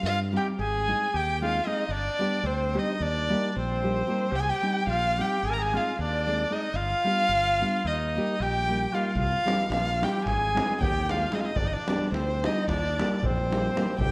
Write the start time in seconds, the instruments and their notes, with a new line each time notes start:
0.03 fretless electric bass G2, trumpet F4, violin F5
0.32 nylon-string guitar G3 C4 D#4 G4
0.36 trumpet G4, violin G5
0.59 fretless electric bass G#1, trumpet G#4, violin G#5
0.88 nylon-string guitar G#3 C4 D#4 G#4
1.14 fretless electric bass D#2, trumpet G4, violin G5
1.41 nylon-string guitar G#3 C4 D#4 G#4, trumpet F4
1.45 violin F5
1.66 nylon-string guitar G#3 C4 D#4 G#4, trumpet D#4, violin D#5
1.89 fretless electric bass G1, trumpet D4, violin D5
2.19 nylon-string guitar G3 B3 D4 G4
2.44 fretless electric bass D2, trumpet C4, violin C5
2.73 nylon-string guitar G3 B3 D4 G4
2.78 trumpet D#4, violin D#5
3.00 fretless electric bass D#2, trumpet D4, violin D5
3.29 nylon-string guitar G3 A#3 D#4 G4
3.56 fretless electric bass A#1, trumpet C4, violin C5
3.82 nylon-string guitar G3 A#3 D#4 G4
4.07 nylon-string guitar G3 A#3 D#4 G4
4.32 fretless electric bass C2, trumpet G4, violin G5
4.40 trumpet G#4, violin G#5
4.49 trumpet G4, violin G5
4.62 nylon-string guitar G3 C4 D#4 G4
4.87 fretless electric bass A#1, trumpet F4, violin F5
5.17 nylon-string guitar G3 C4 D#4 G4, trumpet G4, violin G5
5.43 fretless electric bass G#1, trumpet G#4, violin G#5
5.50 trumpet A#4, violin A#5
5.59 trumpet G#4, violin G#5
5.73 nylon-string guitar G#3 C4 D#4 G#4, trumpet F4, violin F5
5.99 fretless electric bass D#2, trumpet D4, violin D5
6.26 nylon-string guitar G#3 C4 D#4 G#4
6.50 nylon-string guitar G#3 C4 D#4 G#4, trumpet D#4, violin D#5
6.74 fretless electric bass G1, trumpet F4, violin F5
7.04 nylon-string guitar G3 B3 D4 G4
7.29 fretless electric bass G1
7.60 nylon-string guitar G3 B3 D4 G4
7.85 fretless electric bass D#2, trumpet D#4, violin D#5
8.16 nylon-string guitar G3 A#3 D#4 G4
8.40 fretless electric bass A#1, trumpet G4, violin G5
8.68 nylon-string guitar G3 A#3 D#4 G4
8.93 nylon-string guitar G3 A#3 D#4 G4, trumpet F4, violin F5
9.15 fretless electric bass C2, trumpet F4, violin F5, davul low
9.33 davul high
9.45 nylon-string guitar G3 C4 D#4 G4, davul high
9.61 davul high
9.70 fretless electric bass A#1, trumpet F4, violin F5, davul high
10.01 nylon-string guitar G3 C4 D#4 G4, violin G5, davul high
10.05 trumpet G4
10.25 fretless electric bass G#1, trumpet G#4, violin G#5, davul high, davul low
10.42 davul high
10.55 nylon-string guitar G#3 C4 D#4 G#4, davul high
10.81 fretless electric bass D#2, trumpet G4, violin G5, davul low
11.09 nylon-string guitar G#3 C4 D#4 G#4, trumpet F4, violin F5, davul high
11.22 davul high
11.32 nylon-string guitar G#3 C4 D#4 G#4, trumpet D#4, violin D#5, davul high
11.39 trumpet F4, violin F5
11.45 trumpet D#4, violin D#5, davul high
11.56 fretless electric bass G1, trumpet D4, violin D5, davul low
11.65 trumpet D#4, violin D#5
11.72 trumpet D4, violin D5, davul high
11.87 nylon-string guitar G3 B3 D4 G4, davul high
12.02 davul high
12.12 fretless electric bass D2, trumpet C4, violin C5, davul high
12.43 nylon-string guitar G3 B3 D4 G4, trumpet D#4, violin D#5, davul high
12.68 fretless electric bass D#2, trumpet D4, violin D5, davul high, davul low
12.98 nylon-string guitar G3 A#3 D#4 G4, davul high
13.19 fretless electric bass A#1, trumpet D4, violin D5
13.24 trumpet C4, violin C5, davul low
13.38 davul high
13.50 nylon-string guitar G3 A#3 D#4 G4, davul high
13.65 davul high
13.75 nylon-string guitar G3 A#3 D#4 G4, davul high
13.88 davul high
13.98 fretless electric bass C2, trumpet G4, violin G5, davul low